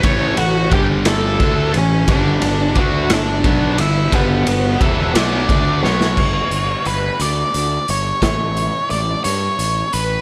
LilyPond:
<<
  \new Staff \with { instrumentName = "Lead electric guitar" } { \time 6/8 \key g \lydian \tempo 4. = 59 << { cis'''8 fis''8 g''8 a''4 cis''8 | d''4 fis''8 d''4 e''8 | b'4 e''8 d''4 cis''8~ | cis''4 b'8 d''4 cis''8 |
cis''4 d''8 cis''4 b'8 | } \\ { cis''8 fis'8 g'8 a'4 cis'8 | d'4 fis'8 d'4 e'8 | b2 r4 | r2. |
r2. | } >> }
  \new Staff \with { instrumentName = "Tonewheel organ" } { \time 6/8 \key g \lydian <a e' b' cis''>4 <g d' d'' g''>4 <a e' b' cis''>4 | <b d' fis'>2.~ | <b d' fis'>2. | r2. |
r2. | }
  \new Staff \with { instrumentName = "Distorted electric guitar" } { \clef bass \time 6/8 \key g \lydian <a, e a>8 <a, e>8 <g, d g>4 <d a d'>8 <a, e>8 | <g, d g>8 <g, d>8 <d a d'>8 <g, d>8 <b, fis b>8 <g, d>8 | <g, d g>8 <g, d>8 <e, b, e>8 <b, fis b>8 <d a d'>8 <b, fis b>8 | r2. |
r2. | }
  \new Staff \with { instrumentName = "Overdriven electric guitar" } { \clef bass \time 6/8 \key g \lydian <a, e a>8 <a, e>8 <g, d g>4 <d a d'>8 <a, e>8 | <g, d g>8 <g, d>8 <d a d'>8 <g, d>8 <b, fis b>8 <g, d>8 | <g, d g>8 <g, d>8 <e, b, e>8 <b, fis b>8 <d a d'>8 <b, fis b>8 | r2. |
r2. | }
  \new Staff \with { instrumentName = "Fingered electric bass" } { \clef bass \time 6/8 \key g \lydian a,,8 a,,8 g,,4 d,8 a,,8 | g,,8 g,,8 d,8 g,,8 b,,8 g,,8 | g,,8 g,,8 e,,8 b,,8 d,8 b,,8 | g,,8 g,,8 g,,8 d,8 d,8 g,,8 |
a,,4 a,,8 g,8 a,,8 a,,8 | }
  \new DrumStaff \with { instrumentName = "Drums" } \drummode { \time 6/8 <bd cymr>8 cymr8 <bd cymr>8 <cymr sn>8 <bd cymr>8 cymr8 | <bd cymr>8 cymr8 <bd cymr>8 <cymr sn>8 <bd cymr>8 cymr8 | <bd cymr>8 cymr8 <bd cymr>8 <cymr sn>8 <bd cymr>8 sn16 sn16 | <cymc bd>8 hh8 hh8 hh8 hh8 hh8 |
<hh bd sn>8 hh8 hh8 hh8 hh8 hh8 | }
>>